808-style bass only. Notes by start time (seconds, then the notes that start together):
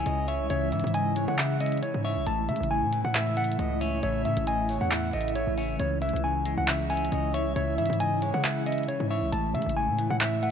0.06 C#2
0.40 C2
0.50 C#2
0.72 G#2
0.84 G#2
1.28 C#3
1.94 G#2
2.16 C2
2.27 A1
2.49 C#3
2.60 A1
2.82 A2
3.05 A2
3.59 C#2
4.03 A1
4.25 A2
4.37 A1
4.81 E2
5.13 A1
5.47 A1
5.80 C#2
6.13 C#2
6.58 C#2
7.12 C#2
7.46 C2
7.56 C#2
7.78 G#2
7.90 G#2
8.34 C#3
9.00 G#2
9.22 C2
9.33 A1
9.55 C#3
9.66 A1
9.88 A2
10.10 A2